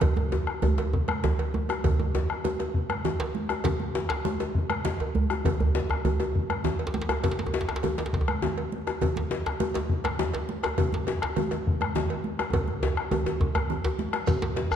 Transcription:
0.01 bombo low, cowbell, low conga, djembe bass
0.16 high conga, djembe tone
0.32 cowbell, djembe slap, high conga, djembe tone
0.47 bombo rim
0.62 cowbell, high conga, low conga, djembe bass
0.78 cowbell, djembe slap, djembe tone, high conga
0.93 bombo low, djembe slap, djembe tone
1.08 bombo rim, cowbell, high conga
1.24 djembe slap, djembe tone, low conga, djembe bass
1.39 cowbell, djembe tone
1.54 djembe tone, high conga
1.69 bombo rim, cowbell, djembe slap, high conga, djembe tone
1.84 bombo low, cowbell, djembe bass, low conga
1.99 djembe tone, high conga
2.15 cowbell, djembe slap, djembe tone, high conga
2.30 bombo rim
2.44 cowbell, high conga, djembe bass, low conga
2.60 cowbell, djembe slap, high conga, djembe tone
2.74 bombo low, djembe slap
2.90 bombo rim, cowbell, high conga
3.05 djembe slap, djembe tone, low conga, djembe bass
3.20 cowbell, djembe slap
3.35 high conga
3.49 bombo rim, cowbell, djembe slap, djembe tone, high conga
3.64 bombo low, cowbell, djembe slap, djembe bass, low conga
3.80 high conga
3.95 cowbell, djembe slap, high conga, djembe tone
4.09 bombo rim, djembe slap
4.25 high conga, djembe bass, low conga
4.40 cowbell, djembe slap, high conga, djembe tone
4.55 bombo low, djembe slap
4.70 bombo rim, cowbell, high conga
4.85 djembe slap, low conga, djembe bass
5.00 cowbell, djembe tone
5.15 high conga, djembe bass
5.30 bombo rim, djembe slap, high conga, djembe tone
5.45 bombo low, cowbell, djembe tone, high conga, djembe bass, low conga
5.60 bombo rim, high conga, djembe bass
5.75 bombo rim, cowbell, djembe slap, djembe tone
5.90 bombo rim, djembe tone
6.05 bombo rim, cowbell, high conga, djembe bass, low conga
6.20 bombo rim, cowbell, djembe slap, djembe tone
6.35 bombo low, djembe slap, high conga
6.50 bombo rim, cowbell, high conga
6.64 djembe slap, djembe tone, low conga, djembe bass
6.79 cowbell
6.87 djembe slap
6.94 bombo rim, djembe slap, high conga
7.02 djembe slap
7.09 bombo rim, cowbell, djembe slap, djembe tone
7.24 bombo low, cowbell, djembe slap, low conga, djembe bass
7.31 djembe slap
7.39 djembe slap, high conga
7.46 djembe tone
7.54 cowbell, djembe slap, djembe tone, high conga
7.61 djembe slap
7.69 bombo rim, djembe slap
7.76 djembe slap
7.83 cowbell, djembe tone, high conga, djembe bass, low conga
7.98 cowbell, djembe slap, djembe tone, high conga
8.06 djembe slap
8.13 bombo low, djembe slap
8.21 djembe tone
8.28 bombo rim, cowbell, high conga
8.42 djembe slap, djembe tone, djembe bass, low conga
8.58 cowbell
8.72 high conga
8.87 bombo rim, cowbell, djembe slap, high conga, djembe tone
9.01 bombo low, cowbell, low conga, djembe bass
9.16 djembe slap, high conga
9.31 cowbell, djembe slap, high conga, djembe tone
9.46 bombo rim, djembe slap
9.60 cowbell, high conga, low conga, djembe bass
9.74 cowbell, djembe slap, high conga, djembe tone
9.89 bombo low, djembe slap
10.04 bombo rim, cowbell, djembe slap, high conga
10.19 djembe slap, djembe tone, djembe bass, low conga
10.34 cowbell, djembe slap
10.49 high conga
10.63 bombo rim, cowbell, djembe slap, high conga, djembe tone
10.78 bombo low, cowbell, low conga, djembe bass
10.93 djembe slap, high conga
11.07 cowbell, djembe slap, high conga, djembe tone
11.22 bombo rim, djembe slap
11.36 cowbell, high conga, low conga, djembe bass
11.51 cowbell, djembe slap, high conga, djembe tone
11.67 bombo low, djembe slap
11.81 bombo rim, cowbell, high conga
11.95 djembe slap, djembe tone, low conga, djembe bass
12.10 cowbell
12.24 high conga
12.39 bombo rim, cowbell, djembe slap, high conga, djembe tone
12.53 bombo rim, bombo low, cowbell, djembe slap, djembe tone, low conga, djembe bass
12.68 bombo rim, high conga
12.83 cowbell, djembe slap, djembe tone
12.97 bombo rim, djembe slap
13.11 cowbell, djembe tone, high conga, low conga, djembe bass
13.26 cowbell, djembe slap, high conga, djembe tone
13.40 bombo low, djembe slap, djembe tone
13.55 bombo rim, cowbell, high conga, djembe tone, djembe bass
13.70 high conga, low conga, djembe bass
13.84 bombo rim, cowbell, djembe slap, djembe bass
13.99 djembe slap, high conga
14.13 bombo rim, cowbell, djembe slap
14.27 bombo low, cowbell, djembe tone, low conga, djembe bass, shekere
14.42 djembe slap, high conga
14.56 cowbell, djembe slap
14.71 bombo rim, djembe tone, shekere

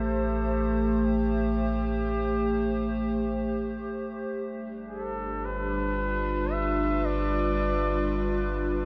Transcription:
Already playing: A1 A3 G4 A4 C5 E5
0.00 A4
1.05 G4
4.31 G1 G3
4.42 D4
4.88 A4
4.93 F4
5.29 B4
5.45 B4
6.52 E5
7.05 D5

